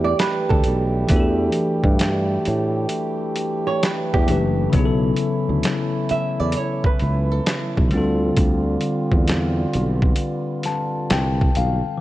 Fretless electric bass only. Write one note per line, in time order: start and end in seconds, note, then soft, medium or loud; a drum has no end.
0.00 0.13 E2 medium
0.51 0.63 D2 medium
0.67 1.03 B1 medium
1.11 1.48 E2 loud
1.85 2.36 G2 medium
2.48 2.85 A2 medium
4.15 4.30 E2 medium
4.29 4.66 F#1 medium
4.74 5.12 B1 loud
5.49 5.62 D2 medium
6.11 muted fretless electric bass stroke soft
6.40 6.53 E2 medium
7.02 7.39 C#2 medium
7.78 7.91 B1 medium
7.93 8.30 D2 medium
8.38 8.75 D2 medium
9.13 9.64 E2 medium
9.75 10.12 B1 medium
11.11 11.48 C2 medium
11.57 11.80 B1 medium